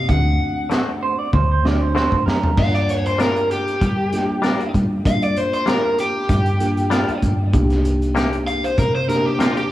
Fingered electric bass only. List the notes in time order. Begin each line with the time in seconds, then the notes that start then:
0.09 D2
1.33 D2
2.12 muted fingered electric bass stroke
2.26 F#2
2.58 G2
3.81 G3
4.75 G3
5.06 G3
6.29 G2
7.09 muted fingered electric bass stroke
7.23 G2
7.54 C2
8.78 C3